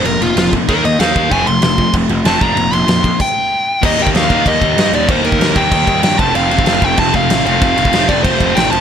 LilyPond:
<<
  \new Staff \with { instrumentName = "Overdriven electric guitar" } { \time 4/4 \key ees \lydian \tempo 4 = 191 bes'8 f'4 r8 bes'8 ees''8 f''4 | aes''8 c'''8 c'''4 r4 a''8 bes''8~ | bes''8 c'''4. g''2 | ees''8 g''8 f''4 ees''4. d''8 |
c''8 bes'4 g''4. g''8 a''8 | f''8 f''8 f''8 g''8 a''8 f''4 f''8~ | f''4. d''8 c''4 g''8 a''8 | }
  \new Staff \with { instrumentName = "Distorted electric guitar" } { \time 4/4 \key ees \lydian <f bes>8 <f bes>8 <f bes>8 <f bes>8 <ees bes ees'>8 <ees bes>8 <ees bes ees'>8 <ees bes ees'>8 | <f a c'>8 <f a>8 <f a>8 <f a>8 <f a>8 <f a>8 <f a c'>8 <f bes d'>8 | <f bes>8 <f bes>8 <f bes>8 <f bes>8 r2 | <ees g bes ees'>4. <ees g bes ees'>2~ <ees g bes ees'>8 |
<ees g bes ees'>4. <ees g bes ees'>2 <f, c f a c'>8~ | <f, c f a c'>4 <f, c f a c'>2~ <f, c f a c'>8 <f, c f a c'>8~ | <f, c f a c'>4 <f, c f a c'>2~ <f, c f a c'>8 r8 | }
  \new Staff \with { instrumentName = "Picked electric bass" } { \clef bass \time 4/4 \key ees \lydian f,,8 f,,8 f,,4 ees,8 ees,8 ees,8 ees,8 | f,,8 f,,8 f,,4 f,,8 f,,8 f,,8 f,,8 | f,,8 f,,8 f,4 r2 | ees,8 ees,8 ees,8 ees,8 ees,8 ees,8 g,8 ees,8 |
ees,8 ees,8 ees,8 ees,8 ees,8 ees,8 g,8 f,,8 | f,,8 f,,8 f,,8 f,,8 f,,8 f,,8 a,,8 f,,8 | f,,8 f,,8 f,,8 f,,8 f,,8 f,,8 a,,8 f,,8 | }
  \new DrumStaff \with { instrumentName = "Drums" } \drummode { \time 4/4 cymc8 cymc8 <cymc sn>8 <cymc bd>8 <cymc bd>8 cymc8 <cymc sn>8 <cymc bd>8 | <cymc bd>8 cymc8 <cymc sn>8 <cymc bd>8 <cymc bd>8 cymc8 <cymc sn>8 <cymc bd>8 | cymc8 cymc8 <cymc sn>8 <cymc bd>8 <cymc bd>4 r4 | <cymc bd>8 cymc16 bd16 <cymc sn>8 <cymc bd>8 <cymc bd>8 <cymc bd>8 <cymc sn>8 cymc8 |
<cymc bd>8 cymc16 bd16 <cymc sn>8 <cymc bd>8 <cymc bd>8 <cymc bd>8 <cymc sn>8 <cymc bd>8 | cymc8 cymc16 bd16 <cymc sn>8 <cymc bd>8 <cymc bd>8 <cymc bd>8 <cymc sn>8 cymc8 | <cymc bd>8 cymc16 bd16 <cymc sn>8 <cymc bd>8 <cymc bd>8 <cymc bd>8 <cymc sn>8 cymc8 | }
>>